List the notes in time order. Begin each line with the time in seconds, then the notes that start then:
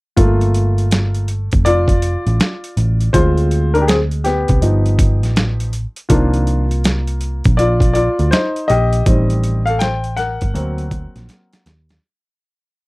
0.17 G1 A3 A#3 F4, kick, closed hi-hat
0.41 closed hi-hat
0.54 closed hi-hat
0.78 closed hi-hat
0.91 snare, closed hi-hat
1.15 closed hi-hat
1.28 closed hi-hat
1.52 F1, kick, closed hi-hat
1.65 F4 D5, closed hi-hat
1.88 kick, closed hi-hat
2.02 closed hi-hat
2.27 A1, closed hi-hat
2.40 snare, closed hi-hat
2.64 closed hi-hat
2.77 A1, closed hi-hat
3.00 closed hi-hat
3.13 D2 G#3 C4 F4 C5, kick, closed hi-hat
3.37 closed hi-hat
3.51 closed hi-hat
3.74 D4 A#4, closed hi-hat
3.81 G4
3.88 C4 G#4, snare, closed hi-hat
4.11 closed hi-hat
4.24 B3 G4, snare, closed hi-hat
4.48 C2, kick, closed hi-hat
4.61 G1 F3 B3 D#4, closed hi-hat
4.86 closed hi-hat
4.99 kick, closed hi-hat
5.23 A1, snare, closed hi-hat
5.36 snare, closed hi-hat
5.60 closed hi-hat
5.73 closed hi-hat
5.96 closed hi-hat
6.09 C2 D#3 F3 A#3 D4 F4, kick, closed hi-hat
6.34 closed hi-hat
6.47 closed hi-hat
6.71 closed hi-hat
6.84 snare, closed hi-hat
7.07 closed hi-hat
7.21 closed hi-hat
7.44 A#1, kick, closed hi-hat
7.57 F4 D5, closed hi-hat
7.80 kick, closed hi-hat
7.93 F4 D5, closed hi-hat
8.19 D2, closed hi-hat
8.31 D#4 C5, snare, closed hi-hat
8.56 closed hi-hat
8.68 A#1 G4 D#5, closed hi-hat
8.93 closed hi-hat
9.06 A1 D#3 G3 C4, kick, closed hi-hat
9.30 closed hi-hat
9.44 closed hi-hat
9.66 A4 F5, closed hi-hat
9.79 C5 G5, snare, closed hi-hat
10.04 closed hi-hat
10.17 A#4 F#5, snare, closed hi-hat
10.41 G1, kick, closed hi-hat
10.54 D2 F#3 A#3 C4, closed hi-hat
10.78 closed hi-hat
10.91 kick, closed hi-hat
11.16 A#1, snare, closed hi-hat
11.29 snare, closed hi-hat
11.53 snare, closed hi-hat
11.66 D#2, snare, closed hi-hat
11.89 snare, closed hi-hat